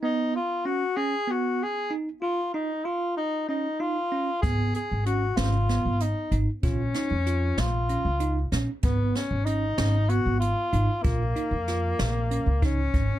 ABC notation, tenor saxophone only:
X:1
M:7/8
L:1/8
Q:1/4=95
K:Bbphr
V:1 name="Tenor saxophone"
^D F ^F ^G F G z | F E F E E F2 | A A G F2 E z | D3 F3 z |
C D E2 G F2 | B,4- B, D2 |]